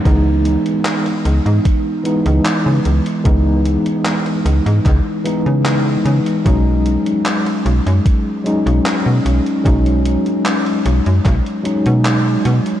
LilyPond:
<<
  \new Staff \with { instrumentName = "Tine electric piano" } { \time 4/4 \key cis \minor \tempo 4 = 75 <e gis b dis'>2~ <e gis b dis'>8 <e gis b dis'>4. | <e gis b dis'>2~ <e gis b dis'>8 <e gis b dis'>4. | <fis gis cis' dis'>2~ <fis gis cis' dis'>8 <fis gis cis' dis'>4. | <fis gis cis' dis'>2~ <fis gis cis' dis'>8 <fis gis cis' dis'>4. | }
  \new Staff \with { instrumentName = "FM bass" } { \clef bass \time 4/4 \key cis \minor cis,8. r8. cis,16 gis,16 r8. cis,16 r16 cis16 cis,16 r16 | cis,8. r8. cis,16 gis,16 cis,16 r8 cis8. cis16 r16 | b,,8. r8. b,,16 fis,16 r8. b,,16 r16 b,16 b,,16 r16 | b,,8. r8. b,,16 fis,16 b,,16 r8 b,8. b,16 r16 | }
  \new DrumStaff \with { instrumentName = "Drums" } \drummode { \time 4/4 <hh bd>8 hh16 hh16 <hc hh>16 hh16 hh16 hh16 <hh bd>8 hh16 hh16 <hc hh>8 hh16 hh16 | <hh bd>8 hh16 hh16 <hc hh>16 hh16 hh16 hh16 <hc hh bd>8 hh16 hh16 <hc hh>8 hh16 hh16 | <hh bd>8 hh16 hh16 <hc hh>16 hh16 hh16 hh16 <hh bd>8 hh16 hh16 <hc hh>8 hh16 hh16 | <hh bd>16 hh16 hh16 hh16 <hc hh>16 hh16 hh16 hh16 <hc hh bd>16 hh16 hh16 hh16 <hc hh>8 hh16 hh16 | }
>>